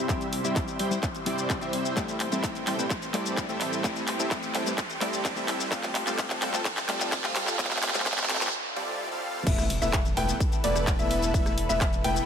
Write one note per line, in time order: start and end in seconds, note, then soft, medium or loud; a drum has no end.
0.00 1.93 C3 medium
0.00 1.93 G3 medium
0.00 1.93 E4 medium
0.00 5.68 C5 medium
0.00 riser medium
0.09 0.41 G3 medium
0.09 0.26 G3 medium
0.09 0.41 C4 medium
0.09 0.26 C4 medium
0.09 0.26 E4 medium
0.09 0.42 E4 medium
0.09 0.42 G4 medium
0.09 0.26 C5 medium
0.09 0.26 E5 medium
0.09 kick loud
0.09 clap medium
0.09 closed hi-hat medium
0.09 shaker medium
0.21 closed hi-hat soft
0.21 shaker soft
0.33 open hi-hat loud
0.44 0.88 G3 medium
0.44 0.62 G3 medium
0.44 0.88 C4 medium
0.44 0.62 C4 medium
0.44 0.62 E4 medium
0.44 0.88 E4 medium
0.44 0.89 G4 medium
0.44 0.62 C5 medium
0.44 0.62 E5 loud
0.44 closed hi-hat soft
0.44 shaker medium
0.56 kick loud
0.56 clap medium
0.56 closed hi-hat medium
0.56 shaker medium
0.68 closed hi-hat soft
0.68 shaker soft
0.79 0.97 G3 medium
0.79 0.97 C4 medium
0.79 0.97 E4 medium
0.79 0.97 C5 medium
0.79 0.97 G5 loud
0.79 open hi-hat loud
0.90 0.97 G3 medium
0.90 0.97 C4 medium
0.90 0.98 E4 medium
0.90 0.98 C5 medium
0.90 closed hi-hat soft
0.90 shaker medium
1.03 kick loud
1.03 clap medium
1.03 closed hi-hat medium
1.03 shaker medium
1.15 closed hi-hat soft
1.15 shaker soft
1.26 1.58 G3 medium
1.26 1.59 G3 medium
1.26 1.59 C4 medium
1.26 1.59 E4 medium
1.26 1.59 G4 medium
1.26 1.59 C5 medium
1.26 1.59 D5 loud
1.26 open hi-hat loud
1.38 closed hi-hat soft
1.38 shaker medium
1.50 kick loud
1.50 clap medium
1.50 closed hi-hat medium
1.50 shaker medium
1.61 1.71 G3 medium
1.61 1.94 G3 medium
1.61 1.71 C4 medium
1.61 1.94 C4 medium
1.61 1.94 E4 medium
1.61 1.72 E4 medium
1.61 1.72 G4 loud
1.61 1.94 C5 medium
1.61 1.94 E5 medium
1.61 closed hi-hat soft
1.61 shaker soft
1.73 open hi-hat loud
1.85 shaker medium
1.96 5.68 A2 medium
1.96 5.68 E3 medium
1.96 2.14 G3 medium
1.96 2.29 A3 medium
1.96 2.29 C4 medium
1.96 2.14 C4 medium
1.96 2.14 E4 medium
1.96 2.29 E4 medium
1.96 8.49 G4 medium
1.96 2.29 G4 medium
1.96 2.14 A4 medium
1.96 2.14 E5 medium
1.96 kick loud
1.96 clap medium
1.96 closed hi-hat medium
1.96 shaker medium
2.08 closed hi-hat soft
2.08 shaker soft
2.20 clap medium
2.20 open hi-hat loud
2.31 2.49 G3 medium
2.31 2.76 A3 medium
2.31 2.76 C4 medium
2.31 2.49 C4 medium
2.31 2.49 E4 medium
2.31 2.76 E4 medium
2.31 2.76 G4 medium
2.31 2.49 A4 medium
2.31 2.49 E5 loud
2.31 closed hi-hat soft
2.31 shaker medium
2.44 kick loud
2.44 clap medium
2.44 closed hi-hat medium
2.44 shaker medium
2.55 closed hi-hat soft
2.55 shaker soft
2.67 2.84 G3 medium
2.67 2.84 C4 medium
2.67 2.84 E4 medium
2.67 2.84 A4 medium
2.67 2.84 G5 loud
2.67 clap medium
2.67 open hi-hat loud
2.78 2.85 A3 medium
2.78 2.85 C4 medium
2.78 2.85 E4 medium
2.78 2.85 B4 medium
2.78 closed hi-hat soft
2.78 shaker medium
2.90 kick loud
2.90 clap medium
2.90 closed hi-hat medium
2.90 shaker medium
3.02 closed hi-hat soft
3.02 shaker soft
3.13 3.46 G3 medium
3.13 3.46 A3 medium
3.13 3.46 C4 medium
3.13 3.46 E4 medium
3.13 3.46 G4 medium
3.13 3.46 A4 medium
3.13 3.46 D5 loud
3.13 clap medium
3.13 open hi-hat loud
3.26 closed hi-hat soft
3.26 shaker medium
3.37 kick loud
3.37 clap medium
3.37 closed hi-hat medium
3.37 shaker medium
3.48 3.81 G3 medium
3.48 3.59 A3 loud
3.48 3.59 C4 medium
3.48 3.81 C4 medium
3.48 3.81 E4 medium
3.48 3.59 E4 medium
3.48 3.59 G4 loud
3.48 3.81 A4 medium
3.48 3.81 E5 medium
3.48 closed hi-hat soft
3.48 shaker soft
3.61 clap medium
3.61 open hi-hat loud
3.73 shaker medium
3.84 4.01 G3 medium
3.84 4.16 A3 medium
3.84 4.16 C4 medium
3.84 4.01 C4 medium
3.84 4.01 E4 medium
3.84 4.17 E4 medium
3.84 4.17 G4 medium
3.84 4.01 A4 medium
3.84 4.01 E5 medium
3.84 kick loud
3.84 clap medium
3.84 closed hi-hat medium
3.84 shaker medium
3.96 closed hi-hat soft
3.96 shaker soft
4.08 clap medium
4.08 open hi-hat loud
4.19 4.37 G3 loud
4.19 4.63 A3 medium
4.19 4.63 C4 medium
4.19 4.37 C4 medium
4.19 4.37 E4 medium
4.19 4.64 E4 medium
4.19 4.64 G4 medium
4.19 4.37 A4 medium
4.19 4.37 E5 loud
4.19 closed hi-hat soft
4.19 shaker medium
4.31 kick loud
4.31 clap medium
4.31 closed hi-hat loud
4.31 shaker medium
4.43 closed hi-hat soft
4.43 shaker soft
4.54 4.72 G3 medium
4.54 4.72 C4 medium
4.54 4.72 E4 medium
4.54 4.72 A4 medium
4.54 4.72 G5 loud
4.54 clap medium
4.54 open hi-hat loud
4.66 4.72 A3 medium
4.66 4.72 C4 medium
4.66 4.73 E4 medium
4.66 4.73 B4 medium
4.66 closed hi-hat soft
4.66 shaker medium
4.78 kick loud
4.78 clap medium
4.78 closed hi-hat medium
4.78 shaker medium
4.90 closed hi-hat soft
4.90 shaker soft
5.01 5.34 G3 medium
5.01 5.33 A3 medium
5.01 5.34 C4 medium
5.01 5.34 E4 medium
5.01 5.34 G4 medium
5.01 5.34 A4 medium
5.01 5.34 D5 loud
5.01 clap medium
5.01 open hi-hat loud
5.13 closed hi-hat soft
5.13 shaker medium
5.25 kick loud
5.25 clap medium
5.25 closed hi-hat medium
5.25 shaker medium
5.36 5.69 G3 medium
5.36 5.46 A3 loud
5.36 5.46 C4 medium
5.36 5.69 C4 medium
5.36 5.69 E4 medium
5.36 5.47 E4 medium
5.36 5.47 G4 loud
5.36 5.69 A4 medium
5.36 5.69 E5 medium
5.36 closed hi-hat soft
5.36 shaker soft
5.48 clap medium
5.48 open hi-hat loud
5.60 shaker medium
5.71 8.50 F2 medium
5.71 8.50 F3 medium
5.71 5.89 G3 medium
5.71 6.04 A3 medium
5.71 6.04 C4 medium
5.71 5.89 C4 medium
5.71 5.89 F4 medium
5.71 6.04 F4 medium
5.71 6.04 G4 medium
5.71 8.50 A4 medium
5.71 5.89 A4 medium
5.71 5.89 F5 medium
5.71 kick loud
5.71 clap medium
5.71 closed hi-hat loud
5.71 shaker medium
5.83 clap medium
5.83 closed hi-hat soft
5.83 shaker soft
5.95 clap medium
5.95 open hi-hat loud
6.06 6.24 G3 loud
6.06 6.50 A3 medium
6.06 6.51 C4 medium
6.06 6.24 C4 medium
6.06 6.24 F4 medium
6.06 6.51 F4 medium
6.06 6.51 G4 medium
6.06 6.24 A4 medium
6.06 6.24 F5 loud
6.06 clap medium
6.06 closed hi-hat soft
6.06 shaker medium
6.18 kick loud
6.18 clap loud
6.18 closed hi-hat medium
6.18 shaker medium
6.30 clap medium
6.30 closed hi-hat soft
6.30 shaker soft
6.42 6.59 G3 medium
6.42 6.59 C4 medium
6.42 6.59 F4 medium
6.42 6.59 A4 medium
6.42 6.59 G5 loud
6.42 clap medium
6.42 open hi-hat loud
6.53 6.60 A3 medium
6.53 6.60 C4 medium
6.53 6.60 F4 medium
6.53 6.60 C5 medium
6.53 clap medium
6.53 closed hi-hat soft
6.53 shaker medium
6.65 kick loud
6.65 clap loud
6.65 closed hi-hat loud
6.65 shaker medium
6.77 clap medium
6.77 closed hi-hat soft
6.77 shaker soft
6.88 7.21 G3 medium
6.88 7.21 A3 medium
6.88 7.21 C4 medium
6.88 7.21 F4 medium
6.88 7.21 G4 medium
6.88 7.21 A4 medium
6.88 7.21 D5 loud
6.88 clap loud
6.88 open hi-hat loud
7.00 clap medium
7.00 closed hi-hat soft
7.00 shaker medium
7.12 kick loud
7.12 clap loud
7.12 closed hi-hat loud
7.12 shaker medium
7.23 7.56 G3 medium
7.23 7.34 A3 loud
7.23 7.34 C4 medium
7.23 7.56 C4 medium
7.23 7.56 F4 medium
7.23 7.34 F4 medium
7.23 7.34 G4 loud
7.23 7.56 A4 medium
7.23 7.56 F5 medium
7.23 clap medium
7.23 closed hi-hat soft
7.23 shaker soft
7.36 clap loud
7.36 open hi-hat loud
7.47 clap medium
7.47 shaker medium
7.58 7.76 G3 medium
7.58 7.91 A3 medium
7.58 7.91 C4 medium
7.58 7.76 C4 medium
7.58 7.76 F4 medium
7.58 7.92 F4 medium
7.58 7.92 G4 medium
7.58 7.76 A4 medium
7.58 7.76 F5 medium
7.58 kick loud
7.58 clap loud
7.58 closed hi-hat loud
7.58 shaker medium
7.65 clap medium
7.71 clap medium
7.71 closed hi-hat soft
7.71 shaker soft
7.77 clap medium
7.83 clap loud
7.83 open hi-hat loud
7.88 clap medium
7.94 8.11 G3 loud
7.94 8.38 A3 medium
7.94 8.38 C4 medium
7.94 8.11 C4 medium
7.94 8.11 F4 medium
7.94 8.38 F4 medium
7.94 8.39 G4 medium
7.94 8.11 A4 medium
7.94 8.11 F5 loud
7.94 clap medium
7.94 closed hi-hat soft
7.94 shaker medium
8.00 clap medium
8.06 kick loud
8.06 clap loud
8.06 closed hi-hat loud
8.06 shaker medium
8.12 clap medium
8.18 clap medium
8.18 closed hi-hat soft
8.18 shaker soft
8.24 clap medium
8.29 8.47 G3 medium
8.29 8.47 C4 medium
8.29 8.47 F4 medium
8.29 8.47 A4 medium
8.29 8.47 G5 loud
8.29 clap loud
8.29 open hi-hat loud
8.35 clap medium
8.40 8.47 A3 medium
8.40 8.47 C4 medium
8.40 8.48 F4 medium
8.40 8.48 C5 medium
8.40 clap loud
8.40 closed hi-hat soft
8.40 shaker medium
8.47 clap medium
8.53 swell medium
8.76 9.09 G3 medium
8.76 9.09 C4 medium
8.76 9.09 F4 medium
8.76 9.09 A4 medium
8.76 9.09 D5 loud
9.12 9.44 G3 medium
9.12 9.44 C4 medium
9.12 9.44 F4 medium
9.12 9.44 A4 medium
9.12 9.44 F5 medium
9.47 9.80 E1 loud
9.47 12.26 E3 medium
9.47 9.64 A3 medium
9.47 9.64 B3 medium
9.47 12.26 E4 medium
9.47 9.64 E4 medium
9.47 12.26 A4 medium
9.47 12.26 B4 medium
9.47 9.64 B4 medium
9.47 9.64 E5 medium
9.47 kick loud
9.47 closed hi-hat medium
9.47 crash loud
9.47 ride medium
9.47 impact medium
9.47 shaker medium
9.58 cross-stick medium
9.58 closed hi-hat soft
9.58 shaker soft
9.70 open hi-hat loud
9.82 10.15 E1 medium
9.82 9.99 A3 loud
9.82 9.99 B3 medium
9.82 9.99 E4 medium
9.82 9.99 B4 medium
9.82 9.99 E5 loud
9.82 closed hi-hat medium
9.82 shaker medium
9.93 kick loud
9.93 clap loud
9.93 closed hi-hat medium
9.93 ride medium
9.93 shaker medium
10.05 closed hi-hat soft
10.05 shaker soft
10.17 10.32 E1 medium
10.17 10.34 A3 medium
10.17 10.34 B3 medium
10.17 10.34 E4 medium
10.17 10.34 B4 medium
10.17 10.34 G5 loud
10.17 open hi-hat loud
10.29 closed hi-hat medium
10.29 shaker medium
10.40 kick loud
10.40 closed hi-hat medium
10.40 ride medium
10.40 shaker medium
10.52 closed hi-hat soft
10.52 shaker soft
10.64 10.97 E1 loud
10.64 10.96 A3 medium
10.64 10.96 B3 medium
10.64 10.96 E4 medium
10.64 10.96 B4 medium
10.64 10.96 D5 medium
10.64 10.96 D5 loud
10.64 open hi-hat loud
10.76 cross-stick medium
10.76 closed hi-hat medium
10.76 shaker medium
10.87 kick loud
10.87 clap loud
10.87 closed hi-hat medium
10.87 ride medium
10.87 shaker medium
10.99 11.32 E1 loud
10.99 11.31 A3 medium
10.99 11.31 B3 medium
10.99 11.31 E4 medium
10.99 11.31 B4 medium
10.99 11.31 E5 loud
10.99 11.31 E5 medium
10.99 closed hi-hat soft
10.99 shaker soft
11.11 open hi-hat loud
11.22 closed hi-hat medium
11.22 shaker medium
11.34 11.67 E1 loud
11.34 11.51 A3 medium
11.34 11.51 B3 medium
11.34 11.51 E4 medium
11.34 11.51 B4 medium
11.34 11.51 E5 medium
11.34 kick loud
11.34 closed hi-hat medium
11.34 ride medium
11.34 shaker medium
11.46 cross-stick medium
11.46 closed hi-hat soft
11.46 shaker soft
11.58 open hi-hat loud
11.69 12.02 E1 loud
11.69 11.87 A3 loud
11.69 11.87 B3 medium
11.69 11.87 E4 medium
11.69 11.87 B4 medium
11.69 11.86 E5 loud
11.69 11.87 E5 loud
11.69 closed hi-hat medium
11.69 shaker medium
11.81 kick loud
11.81 clap loud
11.81 closed hi-hat medium
11.81 ride medium
11.81 shaker medium
11.93 closed hi-hat soft
11.93 shaker soft
12.04 12.19 E1 loud
12.04 12.22 A3 loud
12.04 12.22 B3 medium
12.04 12.22 E4 medium
12.04 12.22 B4 medium
12.04 12.22 G5 loud
12.04 open hi-hat loud
12.16 closed hi-hat medium
12.16 shaker medium